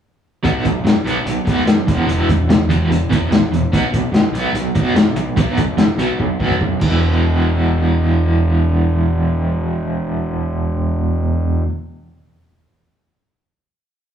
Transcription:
0.44 0.57 B1 medium
0.44 0.64 B2 medium
0.44 0.63 F#3 medium
0.44 0.64 B3 medium
0.44 kick medium
0.44 closed hi-hat medium
0.65 0.78 B1 medium
0.65 0.83 B2 medium
0.65 0.84 F#3 medium
0.65 kick medium
0.65 closed hi-hat medium
0.84 0.97 F#2 medium
0.84 1.03 B2 medium
0.84 1.03 F#3 medium
0.84 snare loud
0.84 closed hi-hat medium
1.04 1.18 B1 medium
1.04 1.24 B2 medium
1.04 1.24 F#3 medium
1.04 1.25 B3 medium
1.04 closed hi-hat medium
1.25 1.39 B1 medium
1.25 1.44 B2 medium
1.25 1.45 F#3 medium
1.25 closed hi-hat medium
1.45 1.59 B1 medium
1.45 1.65 B2 medium
1.45 1.66 F#3 medium
1.45 1.66 B3 medium
1.45 kick medium
1.45 closed hi-hat medium
1.57 snare soft
1.66 1.79 F#2 medium
1.66 1.86 B2 medium
1.66 1.86 F#3 medium
1.66 snare loud
1.66 closed hi-hat medium
1.87 2.01 E1 medium
1.87 2.06 E2 medium
1.87 2.06 B2 medium
1.87 2.06 E3 medium
1.87 kick loud
1.87 closed hi-hat medium
2.07 2.21 E1 medium
2.07 2.27 E2 medium
2.07 2.28 B2 medium
2.07 2.28 E3 loud
2.07 closed hi-hat medium
2.29 2.41 E1 medium
2.29 2.48 E2 medium
2.29 2.48 B2 medium
2.29 kick medium
2.29 closed hi-hat medium
2.47 2.60 B1 medium
2.47 2.68 E2 medium
2.47 2.68 B2 medium
2.47 snare loud
2.47 closed hi-hat medium
2.68 2.82 E1 medium
2.68 2.88 E2 medium
2.68 2.89 B2 medium
2.68 2.90 E3 medium
2.68 closed hi-hat medium
2.89 3.02 E1 medium
2.89 3.08 E2 medium
2.89 3.08 B2 medium
2.89 closed hi-hat medium
3.09 3.24 E1 medium
3.09 3.29 E2 medium
3.09 3.30 B2 medium
3.09 3.30 E3 medium
3.09 kick medium
3.09 closed hi-hat medium
3.30 3.44 B1 medium
3.30 3.50 E2 medium
3.30 3.50 B2 medium
3.30 snare loud
3.30 closed hi-hat medium
3.51 3.64 E1 medium
3.51 3.70 E2 medium
3.51 3.71 B2 medium
3.51 closed hi-hat medium
3.72 3.85 B1 medium
3.72 3.91 B2 medium
3.72 3.91 F#3 medium
3.72 3.92 B3 loud
3.72 kick loud
3.72 closed hi-hat medium
3.92 4.06 B1 medium
3.92 4.11 B2 medium
3.92 4.11 F#3 medium
3.92 kick medium
3.92 closed hi-hat medium
4.12 4.25 F#2 medium
4.12 4.32 B2 medium
4.12 4.32 F#3 medium
4.12 snare loud
4.12 closed hi-hat medium
4.32 4.45 B1 medium
4.32 4.53 B2 medium
4.32 4.54 F#3 medium
4.32 4.54 B3 medium
4.32 closed hi-hat medium
4.53 4.66 B1 loud
4.53 4.74 B2 medium
4.53 4.74 F#3 medium
4.53 closed hi-hat medium
4.75 4.88 B1 medium
4.75 4.95 B2 medium
4.75 4.95 F#3 medium
4.75 4.95 B3 medium
4.75 kick medium
4.75 closed hi-hat medium
4.94 5.07 F#2 medium
4.94 5.14 B2 medium
4.94 5.14 F#3 medium
4.94 snare loud
4.94 closed hi-hat medium
5.16 5.28 B1 medium
5.16 5.35 B2 medium
5.16 5.35 F#3 medium
5.16 closed hi-hat medium
5.37 5.49 B1 medium
5.37 5.56 B2 loud
5.37 5.57 F#3 loud
5.37 5.57 B3 loud
5.37 kick loud
5.37 closed hi-hat medium
5.57 5.70 B1 medium
5.57 5.77 B2 medium
5.57 5.77 F#3 medium
5.57 kick medium
5.57 closed hi-hat medium
5.77 5.90 F#2 medium
5.77 5.97 B2 medium
5.77 5.97 F#3 medium
5.77 snare loud
5.77 closed hi-hat medium
5.97 6.10 B1 medium
5.97 6.17 B2 medium
5.97 6.18 F#3 medium
5.97 6.19 B3 medium
5.97 closed hi-hat medium
6.18 6.32 B1 medium
6.18 6.37 B2 medium
6.18 6.38 F#3 medium
6.18 kick medium
6.39 6.52 B1 medium
6.39 6.59 B2 medium
6.39 6.59 F#3 loud
6.39 6.60 B3 medium
6.39 kick medium
6.51 kick medium
6.60 6.74 F#2 medium
6.60 6.79 B2 medium
6.60 6.79 F#3 medium
6.60 kick medium
6.80 11.62 E1 medium
6.80 11.65 E2 medium
6.80 11.67 B2 loud
6.80 kick loud
6.80 crash medium
6.84 11.69 E3 loud

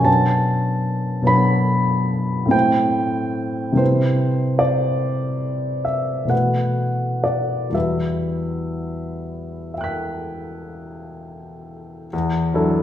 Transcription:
0.00 1.21 B2 soft
0.00 1.22 F#3 soft
0.00 1.23 B3 soft
0.00 1.24 D4 soft
0.05 1.25 C#5 soft
0.05 1.28 A5 medium
1.22 2.46 B2 soft
1.22 2.46 F#3 soft
1.22 2.47 B3 soft
1.22 2.48 D4 soft
1.27 2.48 C#5 soft
1.27 2.52 B5 medium
2.46 3.72 A2 soft
2.46 3.73 A3 soft
2.46 3.73 C4 soft
2.50 3.75 E4 soft
2.50 3.75 C5 soft
2.50 3.79 G5 medium
3.72 6.24 C3 soft
3.72 6.24 G3 soft
3.72 6.25 C4 soft
3.72 6.25 E4 soft
3.77 6.26 B4 soft
3.77 4.61 C5 medium
4.59 5.85 D5 medium
5.85 6.30 E5 medium
6.25 7.67 B2 soft
6.25 7.68 E3 soft
6.25 7.68 A3 soft
6.25 7.69 F#4 soft
6.30 7.69 B4 soft
6.30 7.24 F#5 medium
7.24 7.74 D5 soft
7.70 12.07 E2 soft
7.70 12.07 E3 soft
7.70 12.08 G3 soft
7.70 12.09 F#4 soft
7.75 12.09 B4 soft
7.75 9.73 E5 soft
9.74 12.09 E5 soft
9.74 12.11 G5 soft
9.81 12.13 F#6 soft
9.81 12.14 B6 soft
12.13 12.54 E2 soft
12.54 12.83 F#3 soft
12.54 12.83 D4 soft
12.54 12.83 E4 soft
12.54 12.83 A4 soft

